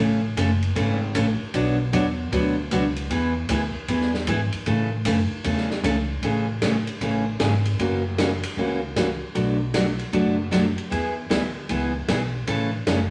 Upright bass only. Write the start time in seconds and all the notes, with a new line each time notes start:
Already playing: A1
0.37 F#1
0.76 G#1
1.15 A1
1.40 muted upright bass stroke
1.54 B1
1.93 E2
2.32 D2
2.71 C#2
3.10 E2
3.49 D2
3.75 muted upright bass stroke
3.88 E2
4.27 G#2
4.53 muted upright bass stroke
4.66 A2
5.05 F#2
5.31 muted upright bass stroke
5.44 E2
5.83 C#2
6.22 A1
7.01 A1
7.40 G#1
7.79 F#1
8.57 C#2
9.35 B1
10.13 F#1
10.91 E2
11.31 D2
11.69 C#2
12.09 B1
12.48 A1
12.87 F#1